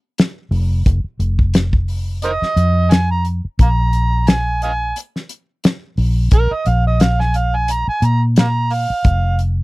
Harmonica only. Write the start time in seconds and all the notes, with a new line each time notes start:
2.24 A#4 C5 D#5
2.93 G#5
3.11 A#5
3.62 F5 A#5
4.29 G#5
4.63 D#5 F5 G#5
6.34 A#4
6.53 D#5
6.68 F5
6.87 D#5
7.02 F5
7.21 G#5
7.37 F5
7.56 G#5
7.71 A#5
7.89 G#5
8.05 A#5
8.40 F5 A#5
8.73 F5